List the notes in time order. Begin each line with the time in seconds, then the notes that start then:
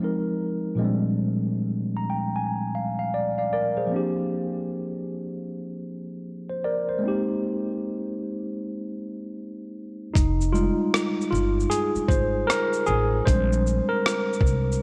0.00 F3 G#3 C4 D#4
0.04 A#4
0.75 A#2 F3 G#3
0.81 G3 C4 D4
1.97 A#5
2.10 G5
2.36 G#5
2.75 F5
2.99 F5
3.14 D5
3.38 D5 F5
3.53 A#4 D5
3.77 G#4 C5
3.87 F3 A#3
3.92 C4 D4
3.96 G4
6.50 C5
6.64 A#4 D5
6.89 C5
6.99 G#3 A#3
7.03 C4 D#4
7.08 G4
10.14 F1 D#4, kick, closed hi-hat, shaker
10.41 shaker
10.53 G3 G#3 D#4 F4, shaker
10.94 cross-stick, closed hi-hat, shaker
11.21 shaker
11.31 G1 F4
11.35 shaker
11.60 shaker
11.70 G#4, closed hi-hat, shaker
11.95 muted upright bass stroke, shaker
12.08 G#1 C5, kick, shaker
12.47 A#4, cross-stick, closed hi-hat, shaker
12.73 shaker
12.86 A1 G#4, shaker
13.25 A#1 G3 G#3 C4 D4 C5, kick, closed hi-hat, shaker
13.53 shaker
13.67 shaker
13.89 A#4
14.06 cross-stick, closed hi-hat, shaker
14.33 shaker
14.41 C2, kick
14.46 shaker
14.72 shaker